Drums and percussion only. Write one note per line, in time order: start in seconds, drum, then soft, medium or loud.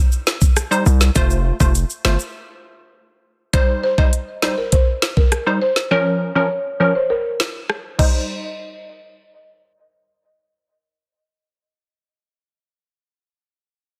0.12 shaker medium
0.27 snare loud
0.27 shaker medium
0.41 kick loud
0.41 shaker medium
0.56 cross-stick medium
0.56 closed hi-hat medium
0.56 shaker medium
0.72 shaker soft
0.86 shaker medium
1.01 snare medium
1.01 shaker medium
1.15 kick loud
1.15 closed hi-hat medium
1.15 shaker medium
1.30 shaker medium
1.60 kick loud
1.60 shaker medium
1.75 closed hi-hat medium
1.75 shaker medium
1.90 shaker soft
2.05 snare loud
2.19 shaker medium
3.54 kick loud
3.54 closed hi-hat medium
3.98 kick medium
4.13 closed hi-hat medium
4.42 snare loud
4.72 kick medium
4.72 closed hi-hat medium
5.02 snare loud
5.17 kick medium
5.32 cross-stick medium
5.32 closed hi-hat medium
5.76 snare medium
7.40 snare loud
7.70 cross-stick medium
7.99 kick loud
7.99 crash medium